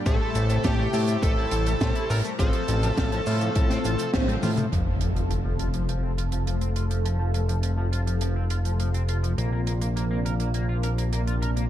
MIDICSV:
0, 0, Header, 1, 9, 480
1, 0, Start_track
1, 0, Tempo, 582524
1, 51, Time_signature, 4, 2, 24, 8
1, 9637, End_track
2, 0, Start_track
2, 0, Title_t, "String machine"
2, 0, Program_c, 0, 50
2, 49, Note_on_c, 0, 81, 103
2, 529, Note_on_c, 0, 79, 101
2, 545, Note_off_c, 0, 81, 0
2, 1010, Note_on_c, 0, 81, 113
2, 1025, Note_off_c, 0, 79, 0
2, 1728, Note_on_c, 0, 82, 104
2, 1752, Note_off_c, 0, 81, 0
2, 1837, Note_off_c, 0, 82, 0
2, 1969, Note_on_c, 0, 81, 115
2, 3377, Note_off_c, 0, 81, 0
2, 9637, End_track
3, 0, Start_track
3, 0, Title_t, "Lead electric guitar"
3, 0, Program_c, 1, 29
3, 53, Note_on_c, 1, 69, 95
3, 530, Note_off_c, 1, 69, 0
3, 533, Note_on_c, 1, 67, 88
3, 1011, Note_off_c, 1, 67, 0
3, 1014, Note_on_c, 1, 69, 97
3, 1729, Note_off_c, 1, 69, 0
3, 1732, Note_on_c, 1, 70, 107
3, 1797, Note_off_c, 1, 70, 0
3, 1972, Note_on_c, 1, 69, 98
3, 3379, Note_off_c, 1, 69, 0
3, 9637, End_track
4, 0, Start_track
4, 0, Title_t, "Analog polysynth"
4, 0, Program_c, 2, 90
4, 51, Note_on_c, 2, 45, 97
4, 51, Note_on_c, 2, 57, 88
4, 51, Note_on_c, 2, 64, 88
4, 51, Note_on_c, 2, 67, 88
4, 51, Note_on_c, 2, 72, 107
4, 382, Note_off_c, 2, 45, 0
4, 382, Note_off_c, 2, 57, 0
4, 382, Note_off_c, 2, 64, 0
4, 382, Note_off_c, 2, 67, 0
4, 382, Note_off_c, 2, 72, 0
4, 410, Note_on_c, 2, 45, 78
4, 410, Note_on_c, 2, 67, 72
4, 411, Note_on_c, 2, 57, 70
4, 411, Note_on_c, 2, 64, 74
4, 411, Note_on_c, 2, 72, 83
4, 523, Note_off_c, 2, 45, 0
4, 523, Note_off_c, 2, 67, 0
4, 524, Note_off_c, 2, 57, 0
4, 524, Note_off_c, 2, 64, 0
4, 524, Note_off_c, 2, 72, 0
4, 771, Note_on_c, 2, 64, 69
4, 771, Note_on_c, 2, 72, 85
4, 772, Note_on_c, 2, 45, 76
4, 772, Note_on_c, 2, 57, 72
4, 772, Note_on_c, 2, 67, 70
4, 1102, Note_off_c, 2, 72, 0
4, 1103, Note_off_c, 2, 45, 0
4, 1103, Note_off_c, 2, 57, 0
4, 1103, Note_off_c, 2, 64, 0
4, 1103, Note_off_c, 2, 67, 0
4, 1131, Note_on_c, 2, 45, 81
4, 1131, Note_on_c, 2, 64, 75
4, 1131, Note_on_c, 2, 67, 71
4, 1132, Note_on_c, 2, 57, 74
4, 1132, Note_on_c, 2, 72, 91
4, 1462, Note_off_c, 2, 45, 0
4, 1463, Note_off_c, 2, 57, 0
4, 1463, Note_off_c, 2, 64, 0
4, 1463, Note_off_c, 2, 67, 0
4, 1463, Note_off_c, 2, 72, 0
4, 1491, Note_on_c, 2, 57, 82
4, 1492, Note_on_c, 2, 45, 93
4, 1492, Note_on_c, 2, 64, 83
4, 1492, Note_on_c, 2, 67, 84
4, 1492, Note_on_c, 2, 72, 104
4, 1943, Note_off_c, 2, 45, 0
4, 1943, Note_off_c, 2, 57, 0
4, 1943, Note_off_c, 2, 64, 0
4, 1943, Note_off_c, 2, 67, 0
4, 1943, Note_off_c, 2, 72, 0
4, 1972, Note_on_c, 2, 45, 95
4, 1972, Note_on_c, 2, 57, 87
4, 1972, Note_on_c, 2, 60, 87
4, 1972, Note_on_c, 2, 65, 89
4, 1972, Note_on_c, 2, 72, 109
4, 2303, Note_off_c, 2, 45, 0
4, 2303, Note_off_c, 2, 57, 0
4, 2303, Note_off_c, 2, 60, 0
4, 2303, Note_off_c, 2, 65, 0
4, 2303, Note_off_c, 2, 72, 0
4, 2332, Note_on_c, 2, 45, 78
4, 2332, Note_on_c, 2, 57, 71
4, 2332, Note_on_c, 2, 60, 70
4, 2332, Note_on_c, 2, 65, 74
4, 2332, Note_on_c, 2, 72, 85
4, 2444, Note_off_c, 2, 45, 0
4, 2444, Note_off_c, 2, 57, 0
4, 2444, Note_off_c, 2, 60, 0
4, 2444, Note_off_c, 2, 65, 0
4, 2444, Note_off_c, 2, 72, 0
4, 2691, Note_on_c, 2, 72, 83
4, 2692, Note_on_c, 2, 45, 77
4, 2692, Note_on_c, 2, 57, 70
4, 2692, Note_on_c, 2, 60, 69
4, 2692, Note_on_c, 2, 65, 71
4, 3023, Note_off_c, 2, 45, 0
4, 3023, Note_off_c, 2, 57, 0
4, 3023, Note_off_c, 2, 60, 0
4, 3023, Note_off_c, 2, 65, 0
4, 3023, Note_off_c, 2, 72, 0
4, 3050, Note_on_c, 2, 45, 78
4, 3050, Note_on_c, 2, 57, 73
4, 3050, Note_on_c, 2, 60, 75
4, 3050, Note_on_c, 2, 65, 73
4, 3050, Note_on_c, 2, 72, 88
4, 3382, Note_off_c, 2, 45, 0
4, 3382, Note_off_c, 2, 57, 0
4, 3382, Note_off_c, 2, 60, 0
4, 3382, Note_off_c, 2, 65, 0
4, 3382, Note_off_c, 2, 72, 0
4, 3410, Note_on_c, 2, 45, 91
4, 3410, Note_on_c, 2, 60, 85
4, 3410, Note_on_c, 2, 72, 102
4, 3411, Note_on_c, 2, 57, 83
4, 3411, Note_on_c, 2, 65, 85
4, 3862, Note_off_c, 2, 45, 0
4, 3862, Note_off_c, 2, 57, 0
4, 3862, Note_off_c, 2, 60, 0
4, 3862, Note_off_c, 2, 65, 0
4, 3862, Note_off_c, 2, 72, 0
4, 9637, End_track
5, 0, Start_track
5, 0, Title_t, "Analog synth pad"
5, 0, Program_c, 3, 89
5, 0, Note_on_c, 3, 55, 75
5, 0, Note_on_c, 3, 67, 87
5, 53, Note_on_c, 3, 48, 79
5, 53, Note_on_c, 3, 64, 73
5, 54, Note_on_c, 3, 57, 72
5, 1938, Note_off_c, 3, 67, 0
5, 1939, Note_off_c, 3, 55, 0
5, 1953, Note_off_c, 3, 48, 0
5, 1953, Note_off_c, 3, 64, 0
5, 1954, Note_off_c, 3, 57, 0
5, 1970, Note_on_c, 3, 48, 80
5, 1970, Note_on_c, 3, 57, 74
5, 1970, Note_on_c, 3, 65, 74
5, 1970, Note_on_c, 3, 69, 87
5, 1971, Note_on_c, 3, 53, 74
5, 3871, Note_off_c, 3, 48, 0
5, 3872, Note_off_c, 3, 53, 0
5, 3872, Note_off_c, 3, 57, 0
5, 3872, Note_off_c, 3, 65, 0
5, 3872, Note_off_c, 3, 69, 0
5, 3889, Note_on_c, 3, 48, 76
5, 3890, Note_on_c, 3, 53, 67
5, 3890, Note_on_c, 3, 65, 68
5, 3890, Note_on_c, 3, 69, 84
5, 3891, Note_on_c, 3, 57, 69
5, 7698, Note_off_c, 3, 57, 0
5, 7698, Note_off_c, 3, 69, 0
5, 7728, Note_on_c, 3, 62, 68
5, 7729, Note_on_c, 3, 58, 67
5, 9618, Note_off_c, 3, 65, 0
5, 9637, Note_off_c, 3, 48, 0
5, 9637, Note_off_c, 3, 53, 0
5, 9637, Note_off_c, 3, 58, 0
5, 9637, Note_off_c, 3, 62, 0
5, 9637, End_track
6, 0, Start_track
6, 0, Title_t, "Clean electric guitar"
6, 0, Program_c, 4, 27
6, 49, Note_on_c, 4, 57, 87
6, 140, Note_off_c, 4, 57, 0
6, 171, Note_on_c, 4, 57, 78
6, 231, Note_off_c, 4, 57, 0
6, 291, Note_on_c, 4, 57, 80
6, 327, Note_off_c, 4, 57, 0
6, 411, Note_on_c, 4, 57, 78
6, 447, Note_off_c, 4, 57, 0
6, 531, Note_on_c, 4, 57, 83
6, 591, Note_off_c, 4, 57, 0
6, 652, Note_on_c, 4, 57, 102
6, 712, Note_off_c, 4, 57, 0
6, 772, Note_on_c, 4, 69, 79
6, 832, Note_off_c, 4, 69, 0
6, 891, Note_on_c, 4, 57, 75
6, 951, Note_off_c, 4, 57, 0
6, 1012, Note_on_c, 4, 57, 81
6, 1101, Note_off_c, 4, 57, 0
6, 1131, Note_on_c, 4, 64, 76
6, 1191, Note_off_c, 4, 64, 0
6, 1253, Note_on_c, 4, 69, 79
6, 1288, Note_off_c, 4, 69, 0
6, 1374, Note_on_c, 4, 57, 78
6, 1409, Note_off_c, 4, 57, 0
6, 1493, Note_on_c, 4, 57, 84
6, 1552, Note_off_c, 4, 57, 0
6, 1613, Note_on_c, 4, 64, 78
6, 1672, Note_off_c, 4, 64, 0
6, 1733, Note_on_c, 4, 69, 76
6, 1792, Note_off_c, 4, 69, 0
6, 1851, Note_on_c, 4, 57, 77
6, 1911, Note_off_c, 4, 57, 0
6, 1971, Note_on_c, 4, 53, 83
6, 2061, Note_off_c, 4, 53, 0
6, 2091, Note_on_c, 4, 53, 76
6, 2151, Note_off_c, 4, 53, 0
6, 2212, Note_on_c, 4, 53, 75
6, 2248, Note_off_c, 4, 53, 0
6, 2331, Note_on_c, 4, 53, 81
6, 2367, Note_off_c, 4, 53, 0
6, 2451, Note_on_c, 4, 53, 83
6, 2511, Note_off_c, 4, 53, 0
6, 2573, Note_on_c, 4, 53, 104
6, 2632, Note_off_c, 4, 53, 0
6, 2692, Note_on_c, 4, 65, 74
6, 2751, Note_off_c, 4, 65, 0
6, 2811, Note_on_c, 4, 53, 73
6, 2871, Note_off_c, 4, 53, 0
6, 2931, Note_on_c, 4, 53, 78
6, 3021, Note_off_c, 4, 53, 0
6, 3051, Note_on_c, 4, 60, 75
6, 3111, Note_off_c, 4, 60, 0
6, 3171, Note_on_c, 4, 65, 74
6, 3207, Note_off_c, 4, 65, 0
6, 3291, Note_on_c, 4, 53, 75
6, 3327, Note_off_c, 4, 53, 0
6, 3410, Note_on_c, 4, 53, 79
6, 3471, Note_off_c, 4, 53, 0
6, 3530, Note_on_c, 4, 60, 78
6, 3591, Note_off_c, 4, 60, 0
6, 3649, Note_on_c, 4, 65, 79
6, 3710, Note_off_c, 4, 65, 0
6, 3768, Note_on_c, 4, 53, 78
6, 3830, Note_off_c, 4, 53, 0
6, 3890, Note_on_c, 4, 53, 76
6, 3980, Note_off_c, 4, 53, 0
6, 4010, Note_on_c, 4, 53, 69
6, 4071, Note_off_c, 4, 53, 0
6, 4131, Note_on_c, 4, 53, 67
6, 4167, Note_off_c, 4, 53, 0
6, 4250, Note_on_c, 4, 53, 70
6, 4287, Note_off_c, 4, 53, 0
6, 4371, Note_on_c, 4, 53, 71
6, 4431, Note_off_c, 4, 53, 0
6, 4492, Note_on_c, 4, 53, 90
6, 4552, Note_off_c, 4, 53, 0
6, 4611, Note_on_c, 4, 65, 69
6, 4671, Note_off_c, 4, 65, 0
6, 4730, Note_on_c, 4, 53, 67
6, 4791, Note_off_c, 4, 53, 0
6, 4850, Note_on_c, 4, 53, 70
6, 4941, Note_off_c, 4, 53, 0
6, 4970, Note_on_c, 4, 60, 71
6, 5031, Note_off_c, 4, 60, 0
6, 5090, Note_on_c, 4, 65, 69
6, 5127, Note_off_c, 4, 65, 0
6, 5212, Note_on_c, 4, 53, 66
6, 5247, Note_off_c, 4, 53, 0
6, 5331, Note_on_c, 4, 53, 76
6, 5391, Note_off_c, 4, 53, 0
6, 5450, Note_on_c, 4, 60, 67
6, 5511, Note_off_c, 4, 60, 0
6, 5569, Note_on_c, 4, 65, 70
6, 5630, Note_off_c, 4, 65, 0
6, 5689, Note_on_c, 4, 53, 70
6, 5750, Note_off_c, 4, 53, 0
6, 5809, Note_on_c, 4, 53, 75
6, 5900, Note_off_c, 4, 53, 0
6, 5930, Note_on_c, 4, 53, 68
6, 5990, Note_off_c, 4, 53, 0
6, 6049, Note_on_c, 4, 53, 68
6, 6086, Note_off_c, 4, 53, 0
6, 6168, Note_on_c, 4, 53, 70
6, 6206, Note_off_c, 4, 53, 0
6, 6288, Note_on_c, 4, 53, 74
6, 6350, Note_off_c, 4, 53, 0
6, 6407, Note_on_c, 4, 53, 91
6, 6469, Note_off_c, 4, 53, 0
6, 6528, Note_on_c, 4, 65, 68
6, 6590, Note_off_c, 4, 65, 0
6, 6648, Note_on_c, 4, 53, 69
6, 6710, Note_off_c, 4, 53, 0
6, 6769, Note_on_c, 4, 53, 72
6, 6860, Note_off_c, 4, 53, 0
6, 6889, Note_on_c, 4, 60, 70
6, 6950, Note_off_c, 4, 60, 0
6, 7010, Note_on_c, 4, 65, 68
6, 7047, Note_off_c, 4, 65, 0
6, 7130, Note_on_c, 4, 53, 68
6, 7166, Note_off_c, 4, 53, 0
6, 7250, Note_on_c, 4, 53, 72
6, 7311, Note_off_c, 4, 53, 0
6, 7369, Note_on_c, 4, 60, 69
6, 7430, Note_off_c, 4, 60, 0
6, 7489, Note_on_c, 4, 65, 69
6, 7550, Note_off_c, 4, 65, 0
6, 7609, Note_on_c, 4, 53, 70
6, 7670, Note_off_c, 4, 53, 0
6, 7729, Note_on_c, 4, 58, 78
6, 7820, Note_off_c, 4, 58, 0
6, 7849, Note_on_c, 4, 58, 71
6, 7910, Note_off_c, 4, 58, 0
6, 7968, Note_on_c, 4, 58, 71
6, 8006, Note_off_c, 4, 58, 0
6, 8087, Note_on_c, 4, 58, 73
6, 8125, Note_off_c, 4, 58, 0
6, 8208, Note_on_c, 4, 58, 74
6, 8270, Note_off_c, 4, 58, 0
6, 8328, Note_on_c, 4, 58, 89
6, 8390, Note_off_c, 4, 58, 0
6, 8448, Note_on_c, 4, 70, 72
6, 8510, Note_off_c, 4, 70, 0
6, 8569, Note_on_c, 4, 58, 65
6, 8630, Note_off_c, 4, 58, 0
6, 8688, Note_on_c, 4, 58, 71
6, 8779, Note_off_c, 4, 58, 0
6, 8808, Note_on_c, 4, 65, 71
6, 8870, Note_off_c, 4, 65, 0
6, 8929, Note_on_c, 4, 70, 68
6, 8966, Note_off_c, 4, 70, 0
6, 9049, Note_on_c, 4, 58, 66
6, 9086, Note_off_c, 4, 58, 0
6, 9169, Note_on_c, 4, 58, 73
6, 9230, Note_off_c, 4, 58, 0
6, 9289, Note_on_c, 4, 65, 69
6, 9350, Note_off_c, 4, 65, 0
6, 9409, Note_on_c, 4, 70, 69
6, 9470, Note_off_c, 4, 70, 0
6, 9529, Note_on_c, 4, 58, 69
6, 9590, Note_off_c, 4, 58, 0
6, 9637, End_track
7, 0, Start_track
7, 0, Title_t, "Analog synth bass"
7, 0, Program_c, 5, 38
7, 51, Note_on_c, 5, 33, 102
7, 148, Note_off_c, 5, 33, 0
7, 292, Note_on_c, 5, 33, 97
7, 485, Note_off_c, 5, 33, 0
7, 532, Note_on_c, 5, 33, 97
7, 725, Note_off_c, 5, 33, 0
7, 771, Note_on_c, 5, 45, 81
7, 964, Note_off_c, 5, 45, 0
7, 1011, Note_on_c, 5, 33, 84
7, 1205, Note_off_c, 5, 33, 0
7, 1251, Note_on_c, 5, 33, 89
7, 1445, Note_off_c, 5, 33, 0
7, 1491, Note_on_c, 5, 45, 83
7, 1588, Note_off_c, 5, 45, 0
7, 1732, Note_on_c, 5, 33, 94
7, 1828, Note_off_c, 5, 33, 0
7, 1971, Note_on_c, 5, 33, 101
7, 2068, Note_off_c, 5, 33, 0
7, 2212, Note_on_c, 5, 33, 96
7, 2405, Note_off_c, 5, 33, 0
7, 2452, Note_on_c, 5, 33, 94
7, 2645, Note_off_c, 5, 33, 0
7, 2692, Note_on_c, 5, 45, 82
7, 2885, Note_off_c, 5, 45, 0
7, 2932, Note_on_c, 5, 45, 98
7, 3125, Note_off_c, 5, 45, 0
7, 3172, Note_on_c, 5, 33, 83
7, 3268, Note_off_c, 5, 33, 0
7, 3411, Note_on_c, 5, 33, 79
7, 3604, Note_off_c, 5, 33, 0
7, 3650, Note_on_c, 5, 45, 88
7, 3844, Note_off_c, 5, 45, 0
7, 3892, Note_on_c, 5, 29, 86
7, 7708, Note_off_c, 5, 29, 0
7, 7730, Note_on_c, 5, 34, 85
7, 9637, Note_off_c, 5, 34, 0
7, 9637, End_track
8, 0, Start_track
8, 0, Title_t, "Impact"
8, 0, Program_c, 6, 103
8, 3891, Note_on_c, 6, 60, 65
8, 5811, Note_off_c, 6, 60, 0
8, 9637, End_track
9, 0, Start_track
9, 0, Title_t, "Drums"
9, 50, Note_on_c, 9, 42, 84
9, 50, Note_on_c, 9, 69, 47
9, 51, Note_on_c, 9, 36, 114
9, 133, Note_off_c, 9, 42, 0
9, 133, Note_off_c, 9, 69, 0
9, 134, Note_off_c, 9, 36, 0
9, 290, Note_on_c, 9, 42, 84
9, 290, Note_on_c, 9, 69, 83
9, 372, Note_off_c, 9, 69, 0
9, 373, Note_off_c, 9, 42, 0
9, 409, Note_on_c, 9, 69, 55
9, 411, Note_on_c, 9, 42, 62
9, 491, Note_off_c, 9, 69, 0
9, 493, Note_off_c, 9, 42, 0
9, 526, Note_on_c, 9, 69, 46
9, 529, Note_on_c, 9, 42, 86
9, 532, Note_on_c, 9, 36, 111
9, 533, Note_on_c, 9, 38, 112
9, 608, Note_off_c, 9, 69, 0
9, 611, Note_off_c, 9, 42, 0
9, 614, Note_off_c, 9, 36, 0
9, 616, Note_off_c, 9, 38, 0
9, 769, Note_on_c, 9, 69, 73
9, 774, Note_on_c, 9, 46, 89
9, 852, Note_off_c, 9, 69, 0
9, 856, Note_off_c, 9, 46, 0
9, 887, Note_on_c, 9, 42, 68
9, 892, Note_on_c, 9, 69, 51
9, 969, Note_off_c, 9, 42, 0
9, 974, Note_off_c, 9, 69, 0
9, 1012, Note_on_c, 9, 36, 114
9, 1012, Note_on_c, 9, 69, 45
9, 1014, Note_on_c, 9, 42, 84
9, 1094, Note_off_c, 9, 36, 0
9, 1094, Note_off_c, 9, 69, 0
9, 1096, Note_off_c, 9, 42, 0
9, 1248, Note_on_c, 9, 42, 88
9, 1249, Note_on_c, 9, 69, 76
9, 1330, Note_off_c, 9, 42, 0
9, 1332, Note_off_c, 9, 69, 0
9, 1371, Note_on_c, 9, 42, 59
9, 1373, Note_on_c, 9, 69, 56
9, 1453, Note_off_c, 9, 42, 0
9, 1456, Note_off_c, 9, 69, 0
9, 1489, Note_on_c, 9, 69, 50
9, 1492, Note_on_c, 9, 36, 110
9, 1493, Note_on_c, 9, 42, 89
9, 1494, Note_on_c, 9, 38, 105
9, 1572, Note_off_c, 9, 69, 0
9, 1574, Note_off_c, 9, 36, 0
9, 1575, Note_off_c, 9, 42, 0
9, 1577, Note_off_c, 9, 38, 0
9, 1610, Note_on_c, 9, 42, 59
9, 1693, Note_off_c, 9, 42, 0
9, 1732, Note_on_c, 9, 69, 80
9, 1738, Note_on_c, 9, 46, 95
9, 1814, Note_off_c, 9, 69, 0
9, 1820, Note_off_c, 9, 46, 0
9, 1850, Note_on_c, 9, 42, 66
9, 1852, Note_on_c, 9, 69, 55
9, 1933, Note_off_c, 9, 42, 0
9, 1934, Note_off_c, 9, 69, 0
9, 1970, Note_on_c, 9, 69, 50
9, 1972, Note_on_c, 9, 36, 116
9, 1976, Note_on_c, 9, 42, 91
9, 2053, Note_off_c, 9, 69, 0
9, 2054, Note_off_c, 9, 36, 0
9, 2059, Note_off_c, 9, 42, 0
9, 2084, Note_on_c, 9, 42, 58
9, 2167, Note_off_c, 9, 42, 0
9, 2210, Note_on_c, 9, 42, 96
9, 2210, Note_on_c, 9, 69, 72
9, 2292, Note_off_c, 9, 42, 0
9, 2292, Note_off_c, 9, 69, 0
9, 2333, Note_on_c, 9, 42, 74
9, 2333, Note_on_c, 9, 69, 59
9, 2415, Note_off_c, 9, 42, 0
9, 2415, Note_off_c, 9, 69, 0
9, 2452, Note_on_c, 9, 36, 112
9, 2452, Note_on_c, 9, 42, 80
9, 2452, Note_on_c, 9, 69, 46
9, 2458, Note_on_c, 9, 38, 109
9, 2534, Note_off_c, 9, 36, 0
9, 2534, Note_off_c, 9, 42, 0
9, 2535, Note_off_c, 9, 69, 0
9, 2540, Note_off_c, 9, 38, 0
9, 2572, Note_on_c, 9, 42, 55
9, 2655, Note_off_c, 9, 42, 0
9, 2689, Note_on_c, 9, 69, 84
9, 2693, Note_on_c, 9, 46, 88
9, 2772, Note_off_c, 9, 69, 0
9, 2776, Note_off_c, 9, 46, 0
9, 2812, Note_on_c, 9, 42, 68
9, 2812, Note_on_c, 9, 69, 53
9, 2894, Note_off_c, 9, 42, 0
9, 2895, Note_off_c, 9, 69, 0
9, 2928, Note_on_c, 9, 42, 92
9, 2931, Note_on_c, 9, 69, 47
9, 2932, Note_on_c, 9, 36, 116
9, 3011, Note_off_c, 9, 42, 0
9, 3013, Note_off_c, 9, 69, 0
9, 3014, Note_off_c, 9, 36, 0
9, 3048, Note_on_c, 9, 38, 34
9, 3054, Note_on_c, 9, 42, 59
9, 3130, Note_off_c, 9, 38, 0
9, 3137, Note_off_c, 9, 42, 0
9, 3169, Note_on_c, 9, 69, 71
9, 3174, Note_on_c, 9, 42, 92
9, 3251, Note_off_c, 9, 69, 0
9, 3256, Note_off_c, 9, 42, 0
9, 3286, Note_on_c, 9, 69, 53
9, 3292, Note_on_c, 9, 42, 62
9, 3369, Note_off_c, 9, 69, 0
9, 3374, Note_off_c, 9, 42, 0
9, 3408, Note_on_c, 9, 38, 117
9, 3408, Note_on_c, 9, 42, 87
9, 3411, Note_on_c, 9, 36, 116
9, 3416, Note_on_c, 9, 69, 52
9, 3490, Note_off_c, 9, 38, 0
9, 3490, Note_off_c, 9, 42, 0
9, 3494, Note_off_c, 9, 36, 0
9, 3499, Note_off_c, 9, 69, 0
9, 3528, Note_on_c, 9, 48, 51
9, 3534, Note_on_c, 9, 42, 53
9, 3610, Note_off_c, 9, 48, 0
9, 3617, Note_off_c, 9, 42, 0
9, 3650, Note_on_c, 9, 46, 84
9, 3650, Note_on_c, 9, 69, 80
9, 3652, Note_on_c, 9, 47, 73
9, 3732, Note_off_c, 9, 46, 0
9, 3733, Note_off_c, 9, 69, 0
9, 3735, Note_off_c, 9, 47, 0
9, 3768, Note_on_c, 9, 69, 60
9, 3772, Note_on_c, 9, 45, 84
9, 3779, Note_on_c, 9, 42, 65
9, 3851, Note_off_c, 9, 69, 0
9, 3854, Note_off_c, 9, 45, 0
9, 3862, Note_off_c, 9, 42, 0
9, 3896, Note_on_c, 9, 42, 74
9, 3978, Note_off_c, 9, 42, 0
9, 4126, Note_on_c, 9, 42, 82
9, 4209, Note_off_c, 9, 42, 0
9, 4255, Note_on_c, 9, 42, 54
9, 4338, Note_off_c, 9, 42, 0
9, 4372, Note_on_c, 9, 42, 84
9, 4455, Note_off_c, 9, 42, 0
9, 4609, Note_on_c, 9, 42, 80
9, 4692, Note_off_c, 9, 42, 0
9, 4727, Note_on_c, 9, 42, 61
9, 4809, Note_off_c, 9, 42, 0
9, 4853, Note_on_c, 9, 42, 75
9, 4935, Note_off_c, 9, 42, 0
9, 5095, Note_on_c, 9, 42, 84
9, 5177, Note_off_c, 9, 42, 0
9, 5208, Note_on_c, 9, 42, 67
9, 5291, Note_off_c, 9, 42, 0
9, 5333, Note_on_c, 9, 42, 79
9, 5416, Note_off_c, 9, 42, 0
9, 5450, Note_on_c, 9, 42, 47
9, 5532, Note_off_c, 9, 42, 0
9, 5570, Note_on_c, 9, 42, 73
9, 5653, Note_off_c, 9, 42, 0
9, 5692, Note_on_c, 9, 42, 60
9, 5774, Note_off_c, 9, 42, 0
9, 5814, Note_on_c, 9, 42, 78
9, 5896, Note_off_c, 9, 42, 0
9, 6051, Note_on_c, 9, 42, 75
9, 6133, Note_off_c, 9, 42, 0
9, 6173, Note_on_c, 9, 42, 64
9, 6256, Note_off_c, 9, 42, 0
9, 6288, Note_on_c, 9, 42, 83
9, 6370, Note_off_c, 9, 42, 0
9, 6533, Note_on_c, 9, 42, 84
9, 6616, Note_off_c, 9, 42, 0
9, 6653, Note_on_c, 9, 42, 55
9, 6735, Note_off_c, 9, 42, 0
9, 6765, Note_on_c, 9, 42, 91
9, 6848, Note_off_c, 9, 42, 0
9, 7006, Note_on_c, 9, 42, 79
9, 7089, Note_off_c, 9, 42, 0
9, 7129, Note_on_c, 9, 42, 54
9, 7212, Note_off_c, 9, 42, 0
9, 7248, Note_on_c, 9, 42, 77
9, 7331, Note_off_c, 9, 42, 0
9, 7370, Note_on_c, 9, 42, 44
9, 7452, Note_off_c, 9, 42, 0
9, 7487, Note_on_c, 9, 42, 78
9, 7569, Note_off_c, 9, 42, 0
9, 7613, Note_on_c, 9, 42, 54
9, 7695, Note_off_c, 9, 42, 0
9, 7731, Note_on_c, 9, 42, 73
9, 7813, Note_off_c, 9, 42, 0
9, 7968, Note_on_c, 9, 42, 77
9, 8051, Note_off_c, 9, 42, 0
9, 8088, Note_on_c, 9, 42, 59
9, 8170, Note_off_c, 9, 42, 0
9, 8214, Note_on_c, 9, 42, 78
9, 8296, Note_off_c, 9, 42, 0
9, 8453, Note_on_c, 9, 42, 84
9, 8535, Note_off_c, 9, 42, 0
9, 8568, Note_on_c, 9, 42, 65
9, 8651, Note_off_c, 9, 42, 0
9, 8686, Note_on_c, 9, 42, 77
9, 8769, Note_off_c, 9, 42, 0
9, 8927, Note_on_c, 9, 42, 80
9, 9009, Note_off_c, 9, 42, 0
9, 9051, Note_on_c, 9, 42, 65
9, 9133, Note_off_c, 9, 42, 0
9, 9168, Note_on_c, 9, 42, 80
9, 9251, Note_off_c, 9, 42, 0
9, 9290, Note_on_c, 9, 42, 47
9, 9373, Note_off_c, 9, 42, 0
9, 9414, Note_on_c, 9, 42, 72
9, 9496, Note_off_c, 9, 42, 0
9, 9532, Note_on_c, 9, 42, 63
9, 9615, Note_off_c, 9, 42, 0
9, 9637, End_track
0, 0, End_of_file